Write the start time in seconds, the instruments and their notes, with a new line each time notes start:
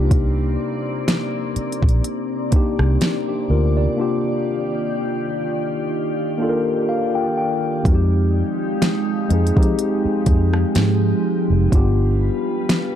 Already playing: fingered electric bass C2, ambient pad C3 A#3 C4 D5, tine electric piano A#3 D4 D#4 G4
0.11 kick, closed hi-hat
1.08 snare, closed hi-hat
1.56 muted fingered electric bass stroke, closed hi-hat
1.72 closed hi-hat
1.83 fingered electric bass A#1, kick
1.89 closed hi-hat
2.04 closed hi-hat
2.51 tine electric piano A#3 D4 D#4, muted fingered electric bass stroke, kick, closed hi-hat
2.56 tine electric piano G4
2.79 fingered electric bass C2, cross-stick
3.01 snare, closed hi-hat
3.28 tine electric piano D4 G4
3.50 fingered electric bass D2, tine electric piano F4 A#4
3.77 tine electric piano G4 D5
3.97 ambient pad D#3 F4 G4, tine electric piano A#3 D4 F4
4.01 tine electric piano G4
6.38 tine electric piano A#3 D4 F4
6.43 tine electric piano A4
6.49 tine electric piano A#4
6.89 tine electric piano F5
7.15 tine electric piano G5
7.37 tine electric piano G5
7.84 fingered electric bass F2, ambient pad F3 G#3 D#4 G4, tine electric piano G#3 C4 D#4, kick, closed hi-hat
7.88 tine electric piano F#4
7.95 tine electric piano G4
8.82 snare, closed hi-hat
9.29 fingered electric bass F2, tine electric piano G#3 C4 D#4, closed hi-hat
9.33 tine electric piano G#4
9.47 closed hi-hat
9.55 fingered electric bass F3, tine electric piano G#3 C4 D#4, kick
9.60 tine electric piano G4, closed hi-hat
9.79 closed hi-hat
10.05 muted fingered electric bass stroke
10.26 fingered electric bass F2, kick, closed hi-hat
10.54 cross-stick
10.75 fingered electric bass G#2, snare, closed hi-hat
11.50 fingered electric bass F1
11.71 fingered electric bass G1, ambient pad G3 F4 B4, tine electric piano B3 D4 F4, kick, closed hi-hat
11.75 tine electric piano G4
12.69 snare, closed hi-hat